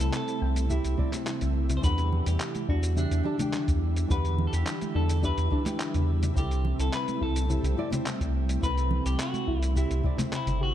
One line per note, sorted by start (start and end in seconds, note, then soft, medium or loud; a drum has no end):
0.00 0.10 C2 medium
0.00 0.66 C3 medium
0.00 1.79 C3 medium
0.00 6.32 G3 medium
0.00 1.79 A3 medium
0.00 0.67 C4 medium
0.00 0.67 E4 medium
0.00 1.79 E4 medium
0.00 0.68 A4 medium
0.00 0.13 A4 medium
0.00 shaker medium
0.13 0.72 A4 loud
0.13 clap loud
0.13 shaker medium
0.28 closed hi-hat soft
0.28 shaker soft
0.42 0.79 C2 medium
0.42 0.67 G5 medium
0.56 closed hi-hat medium
0.56 shaker medium
0.69 0.95 C3 medium
0.69 0.95 C4 medium
0.69 0.96 E4 medium
0.69 1.51 E4 medium
0.69 0.96 G4 medium
0.69 kick medium
0.69 shaker medium
0.84 0.96 C2 medium
0.84 closed hi-hat soft
0.84 shaker soft
0.97 1.09 C3 medium
0.97 1.09 C4 medium
0.97 1.09 E4 medium
0.97 1.10 D5 medium
0.97 kick loud
1.11 1.79 C3 medium
1.11 1.80 C4 medium
1.11 1.80 E4 medium
1.11 clap soft
1.11 closed hi-hat medium
1.11 shaker medium
1.15 1.81 C5 medium
1.27 1.52 E4 loud
1.27 clap loud
1.27 shaker medium
1.41 1.79 C2 medium
1.41 closed hi-hat soft
1.41 low conga medium
1.41 shaker soft
1.70 closed hi-hat medium
1.70 low conga medium
1.70 shaker medium
1.77 1.83 C5 medium
1.81 2.21 E2 loud
1.81 6.32 D3 medium
1.81 2.92 E3 medium
1.81 2.93 D4 medium
1.81 2.09 D4 medium
1.81 10.74 E4 medium
1.81 2.94 G4 medium
1.81 2.28 B4 loud
1.81 kick loud
1.81 shaker medium
1.85 2.94 F#5 medium
1.98 closed hi-hat soft
1.98 shaker soft
2.12 low conga medium
2.26 2.37 E2 medium
2.26 2.69 G4 medium
2.26 closed hi-hat medium
2.26 shaker medium
2.40 clap loud
2.40 shaker medium
2.55 closed hi-hat soft
2.55 high conga medium
2.55 shaker soft
2.69 3.06 E2 loud
2.69 2.95 D4 loud
2.69 2.98 F#4 loud
2.69 kick medium
2.83 closed hi-hat medium
2.83 shaker medium
2.95 3.22 E3 medium
2.95 3.22 D4 medium
2.95 3.79 D4 medium
2.95 3.22 G4 medium
2.95 3.23 E5 medium
2.95 low conga medium
2.95 shaker medium
3.11 3.22 E2 medium
3.11 closed hi-hat soft
3.11 shaker soft
3.23 3.35 E3 medium
3.23 3.36 D4 medium
3.23 3.52 D4 loud
3.23 3.36 G4 medium
3.23 3.36 A5 medium
3.37 4.06 E3 medium
3.37 4.06 D4 medium
3.37 4.07 G4 medium
3.37 closed hi-hat medium
3.37 high conga loud
3.37 low conga medium
3.37 shaker medium
3.42 4.08 G5 medium
3.53 clap loud
3.53 shaker medium
3.68 4.05 E2 medium
3.68 kick loud
3.68 closed hi-hat soft
3.68 shaker soft
3.96 closed hi-hat medium
3.96 shaker medium
4.08 4.48 E2 medium
4.08 5.19 E3 medium
4.08 5.19 D4 medium
4.08 4.35 D4 medium
4.08 5.20 G4 medium
4.08 4.47 B4 loud
4.08 5.21 F#5 loud
4.08 kick loud
4.08 shaker medium
4.25 closed hi-hat soft
4.25 shaker soft
4.38 low conga medium
4.47 4.54 A4 medium
4.53 4.64 E2 medium
4.53 4.97 G4 loud
4.53 closed hi-hat medium
4.53 shaker medium
4.67 clap loud
4.67 shaker medium
4.81 closed hi-hat soft
4.81 high conga medium
4.81 shaker soft
4.95 5.33 E2 loud
4.95 5.22 D4 loud
4.95 5.22 A4 loud
5.09 closed hi-hat medium
5.09 shaker medium
5.22 5.48 E3 medium
5.22 5.48 D4 medium
5.22 5.49 D4 medium
5.22 5.49 G4 medium
5.22 6.05 B4 loud
5.22 5.49 E5 medium
5.22 kick medium
5.22 shaker medium
5.38 5.48 E2 loud
5.38 closed hi-hat soft
5.38 shaker soft
5.50 5.62 E3 medium
5.50 5.62 D4 medium
5.50 5.78 D4 loud
5.50 5.63 G4 medium
5.50 5.63 A5 loud
5.50 kick loud
5.63 6.32 E3 medium
5.63 6.32 D4 medium
5.63 6.33 G4 medium
5.63 clap soft
5.63 closed hi-hat medium
5.63 high conga loud
5.63 shaker medium
5.67 6.34 G5 medium
5.80 clap loud
5.80 shaker medium
5.94 6.32 E2 medium
5.94 closed hi-hat soft
5.94 low conga medium
5.94 shaker soft
6.23 closed hi-hat medium
6.23 low conga medium
6.23 shaker medium
6.34 6.74 C2 loud
6.34 7.45 C3 medium
6.34 10.74 C3 medium
6.34 10.74 G3 medium
6.34 10.74 A3 medium
6.34 7.46 C4 medium
6.34 6.62 E4 medium
6.34 7.46 E4 medium
6.34 6.77 G4 medium
6.34 kick loud
6.34 shaker medium
6.38 7.47 A4 loud
6.51 closed hi-hat soft
6.51 shaker soft
6.65 low conga medium
6.79 6.90 C2 medium
6.79 6.93 A4 loud
6.79 closed hi-hat medium
6.79 shaker medium
6.93 7.22 B4 loud
6.93 clap loud
6.93 shaker medium
7.08 closed hi-hat soft
7.08 high conga medium
7.08 shaker soft
7.21 7.59 C2 loud
7.21 7.48 E4 loud
7.21 7.75 A4 medium
7.21 kick medium
7.36 closed hi-hat medium
7.36 shaker medium
7.48 7.74 C3 medium
7.48 7.75 C4 medium
7.48 7.75 E4 medium
7.48 7.75 G4 medium
7.48 low conga medium
7.48 shaker medium
7.64 7.74 C2 loud
7.64 closed hi-hat soft
7.64 shaker soft
7.77 7.88 C3 medium
7.77 7.89 C4 medium
7.77 8.05 E4 loud
7.77 7.89 E4 medium
7.77 7.89 D5 loud
7.90 8.58 C3 medium
7.90 8.59 C4 medium
7.90 8.60 E4 medium
7.90 closed hi-hat medium
7.90 high conga medium
7.90 low conga medium
7.90 shaker medium
7.94 8.60 C5 loud
8.06 clap loud
8.06 shaker medium
8.21 8.58 C2 medium
8.21 kick loud
8.21 closed hi-hat soft
8.21 shaker soft
8.49 closed hi-hat medium
8.49 shaker medium
8.61 9.00 C2 loud
8.61 9.72 C3 medium
8.61 9.72 C4 medium
8.61 8.88 E4 medium
8.61 9.73 E4 medium
8.61 9.03 B4 loud
8.61 kick loud
8.61 shaker medium
8.65 9.74 A4 loud
8.78 closed hi-hat soft
8.78 shaker soft
8.91 low conga medium
9.06 9.16 C2 medium
9.06 9.20 G4 loud
9.06 closed hi-hat medium
9.06 shaker medium
9.20 9.62 F#4 loud
9.20 clap loud
9.20 shaker medium
9.34 closed hi-hat soft
9.34 high conga medium
9.34 shaker soft
9.48 9.85 C2 loud
9.48 9.74 E4 loud
9.48 kick medium
9.62 9.73 E4 loud
9.62 closed hi-hat medium
9.62 shaker medium
9.75 10.01 C3 medium
9.75 10.01 C4 medium
9.75 10.01 E4 medium
9.75 10.02 E4 medium
9.75 10.34 E4 medium
9.75 10.02 G4 medium
9.75 kick medium
9.75 shaker medium
9.91 10.01 C2 medium
9.91 closed hi-hat soft
9.91 shaker soft
10.03 10.15 C3 medium
10.03 10.15 C4 medium
10.03 10.30 E4 medium
10.03 10.16 E4 medium
10.03 10.16 D5 loud
10.03 kick loud
10.17 10.74 C3 medium
10.17 10.74 C4 medium
10.17 10.74 E4 medium
10.17 clap soft
10.17 closed hi-hat medium
10.17 high conga loud
10.17 low conga medium
10.17 shaker medium
10.21 10.74 C5 medium
10.33 10.62 E4 loud
10.33 clap loud
10.33 shaker medium
10.47 10.74 G1 loud
10.47 closed hi-hat soft
10.47 low conga medium
10.47 shaker soft
10.61 10.74 F#4 loud
10.61 10.74 G4 loud